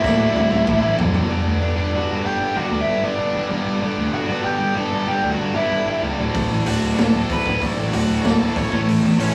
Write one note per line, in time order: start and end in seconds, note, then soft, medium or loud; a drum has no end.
0.00 0.25 D1 loud
0.00 0.18 D2 loud
0.00 0.18 A2 loud
0.00 0.17 D3 loud
0.00 0.96 E4 medium
0.00 0.96 E5 loud
0.04 kick loud
0.04 snare medium
0.18 0.32 D2 medium
0.18 0.34 A2 medium
0.18 0.33 D3 loud
0.34 0.45 D1 loud
0.34 0.50 D2 medium
0.34 0.49 A2 loud
0.34 0.49 D3 loud
0.34 high tom medium
0.50 0.61 D1 medium
0.50 0.64 D2 medium
0.50 0.65 A2 medium
0.50 0.65 D3 medium
0.50 high tom medium
0.65 0.78 D1 loud
0.65 0.81 D2 medium
0.65 0.80 A2 loud
0.65 0.80 D3 loud
0.65 kick loud
0.65 mid tom medium
0.81 0.93 A1 medium
0.81 0.96 D2 medium
0.81 0.96 A2 medium
0.81 0.96 D3 loud
0.97 1.19 D1 medium
0.97 1.13 D2 loud
0.97 1.12 A2 loud
0.97 1.12 D3 loud
0.97 floor tom loud
1.13 1.27 D2 medium
1.13 1.28 A2 medium
1.13 1.27 D3 loud
1.13 floor tom medium
1.27 1.39 G1 medium
1.27 1.78 G2 medium
1.27 1.75 D3 loud
1.27 1.77 G3 medium
1.27 1.76 B3 medium
1.27 1.76 D4 medium
1.27 1.75 G4 loud
1.46 1.55 D2 medium
1.61 1.71 G1 medium
1.61 1.91 D4 medium
1.61 1.91 D5 medium
1.76 1.87 G1 medium
1.76 2.53 G2 medium
1.76 2.53 D3 medium
1.76 2.55 G3 medium
1.76 2.55 B3 medium
1.76 2.56 D4 medium
1.76 2.56 G4 medium
1.93 2.03 G1 medium
1.93 2.23 F#4 medium
1.93 2.26 F#5 medium
2.09 2.19 G1 medium
2.23 2.34 G1 medium
2.23 2.53 G2 medium
2.23 2.54 D3 medium
2.23 2.56 G3 medium
2.23 2.54 G4 medium
2.23 2.57 G5 medium
2.40 2.50 G1 medium
2.54 2.65 G1 loud
2.54 3.04 G2 loud
2.54 3.02 D3 medium
2.54 3.03 G3 loud
2.54 3.03 B3 medium
2.54 3.03 D4 loud
2.54 2.78 F#4 medium
2.54 3.02 G4 loud
2.54 2.80 F#5 medium
2.71 2.81 D2 medium
2.81 3.03 E4 medium
2.81 3.05 E5 medium
2.87 2.97 G1 medium
3.02 3.12 G1 medium
3.02 3.80 G2 medium
3.02 3.79 D3 medium
3.02 3.81 G3 medium
3.02 3.82 B3 medium
3.02 3.82 D4 medium
3.02 3.48 D4 medium
3.02 3.82 G4 medium
3.02 3.47 D5 medium
3.18 3.28 G1 medium
3.34 3.44 G1 medium
3.49 3.60 G1 medium
3.49 3.80 G2 medium
3.49 3.81 D3 medium
3.49 3.82 G3 medium
3.66 3.76 G1 medium
3.80 3.91 G1 medium
3.80 4.28 G2 medium
3.80 4.28 D3 medium
3.80 4.28 G3 medium
3.80 4.29 B3 loud
3.80 4.28 D4 medium
3.80 4.27 G4 medium
3.97 4.07 D2 medium
4.12 4.23 G1 medium
4.12 4.44 F#4 medium
4.12 4.43 F#5 medium
4.28 4.38 G1 medium
4.28 5.06 G2 medium
4.28 5.07 D3 medium
4.28 5.07 G3 medium
4.28 5.07 B3 medium
4.28 5.09 D4 medium
4.28 5.07 G4 medium
4.44 4.54 G1 loud
4.44 4.75 G4 medium
4.44 4.77 G5 loud
4.60 4.70 G1 medium
4.75 4.85 G1 medium
4.75 5.06 G2 medium
4.75 5.07 D3 medium
4.75 5.08 G3 medium
4.75 5.07 A4 medium
4.75 5.08 A5 loud
4.91 5.01 G1 medium
5.07 5.17 G1 loud
5.07 5.54 G2 medium
5.07 5.55 D3 loud
5.07 5.55 G3 medium
5.07 5.54 B3 loud
5.07 5.55 D4 medium
5.07 5.53 G4 loud
5.07 5.32 G4 medium
5.07 5.30 G5 loud
5.23 5.33 D2 medium
5.31 5.55 F#4 medium
5.31 5.55 F#5 medium
5.39 5.49 G1 medium
5.55 5.65 G1 medium
5.55 6.17 G2 medium
5.55 6.17 D3 medium
5.55 6.18 G3 medium
5.55 6.18 B3 medium
5.55 8.72 D4 medium
5.55 6.00 E4 medium
5.55 6.17 G4 medium
5.55 5.99 E5 medium
5.71 5.81 G1 medium
5.86 5.96 G1 medium
6.01 6.12 C#2 medium
6.01 6.17 G2 medium
6.01 6.18 D3 medium
6.01 6.18 G3 medium
6.18 6.28 D1 medium
6.18 6.64 D2 medium
6.18 6.64 A2 medium
6.18 6.66 D3 medium
6.18 6.66 A3 loud
6.18 6.66 F#4 medium
6.35 6.45 D1 medium
6.35 kick loud
6.35 open hi-hat medium
6.50 6.60 A1 medium
6.65 6.76 D1 medium
6.65 7.43 D2 medium
6.65 7.44 A2 medium
6.65 7.44 D3 medium
6.65 7.46 A3 medium
6.65 7.45 F#4 medium
6.65 6.96 F#4 medium
6.65 6.99 F#5 medium
6.65 open hi-hat medium
6.82 6.92 D1 medium
6.98 7.08 D1 medium
6.98 7.28 A4 medium
6.98 7.29 A5 loud
6.98 snare loud
6.98 open hi-hat medium
7.13 7.23 D1 medium
7.13 7.43 D2 medium
7.13 7.44 A2 medium
7.13 7.44 D3 medium
7.30 7.39 D1 medium
7.30 7.60 B4 medium
7.30 7.60 B5 medium
7.30 kick medium
7.30 open hi-hat medium
7.45 7.55 D1 medium
7.45 7.91 D2 medium
7.45 7.92 A2 medium
7.45 7.92 D3 medium
7.45 7.94 A3 loud
7.45 7.92 F#4 medium
7.45 kick medium
7.61 7.71 D1 loud
7.61 kick medium
7.61 open hi-hat medium
7.77 7.87 A1 medium
7.92 8.03 D1 medium
7.92 8.69 D2 medium
7.92 8.68 A2 medium
7.92 8.70 D3 medium
7.92 8.71 A3 medium
7.92 8.23 F#4 medium
7.92 8.71 F#4 medium
7.92 8.26 F#5 medium
7.92 open hi-hat medium
8.08 8.18 D1 medium
8.24 8.34 D1 loud
8.24 8.55 A4 medium
8.24 8.57 A5 loud
8.24 snare loud
8.24 open hi-hat medium
8.39 8.50 D1 medium
8.39 8.70 D2 medium
8.39 8.69 A2 medium
8.39 8.70 D3 medium
8.56 8.66 D1 loud
8.56 8.86 C#5 medium
8.56 8.86 C#6 medium
8.56 kick medium
8.56 open hi-hat medium
8.70 8.82 A1 loud
8.70 9.16 A2 medium
8.70 9.17 E3 loud
8.70 9.18 A3 medium
8.70 9.18 C#4 loud
8.70 9.18 E4 loud
8.70 9.18 A4 medium
8.70 kick medium
8.87 8.96 A1 loud
8.87 open hi-hat medium
9.02 9.12 E2 loud
9.17 9.28 A1 loud
9.17 9.35 A2 medium
9.17 9.35 E3 medium
9.17 9.35 A3 medium
9.17 9.35 C#4 medium
9.17 9.35 E4 medium
9.17 9.35 A4 medium
9.17 9.35 C#5 loud
9.17 open hi-hat medium